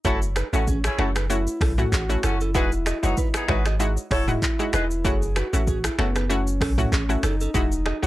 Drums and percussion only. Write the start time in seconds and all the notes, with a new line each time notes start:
0.05 kick, shaker
0.22 shaker
0.36 finger snap, cross-stick, shaker
0.53 shaker
0.68 kick, shaker
0.84 finger snap, cross-stick, shaker
0.99 finger snap, cross-stick
1.16 finger snap, cross-stick, shaker
1.30 shaker
1.47 shaker
1.61 finger snap, kick, cross-stick, open hi-hat
1.78 mid tom, shaker
1.92 kick, clap, shaker
2.10 shaker
2.23 finger snap, cross-stick, shaker
2.41 shaker
2.55 kick, shaker
2.72 shaker
2.86 finger snap, cross-stick, shaker
3.03 shaker
3.17 kick, shaker
3.34 finger snap, cross-stick, shaker
3.48 finger snap, kick, cross-stick
3.66 finger snap, cross-stick, shaker
3.80 shaker
3.97 shaker
4.11 finger snap, kick, cross-stick, open hi-hat
4.28 mid tom, shaker
4.42 kick, clap, shaker
4.60 shaker
4.73 finger snap, cross-stick, shaker
4.91 shaker
5.05 kick, shaker
5.22 shaker
5.36 finger snap, cross-stick, shaker
5.54 shaker
5.67 kick, shaker
5.84 finger snap, cross-stick, shaker
5.99 finger snap, cross-stick
6.16 finger snap, cross-stick, shaker
6.30 shaker
6.47 shaker
6.61 finger snap, kick, cross-stick, open hi-hat
6.78 mid tom, shaker
6.92 kick, clap, shaker
7.10 shaker
7.23 finger snap, cross-stick, shaker
7.41 shaker
7.55 kick, shaker
7.72 shaker
7.86 finger snap, cross-stick
8.03 shaker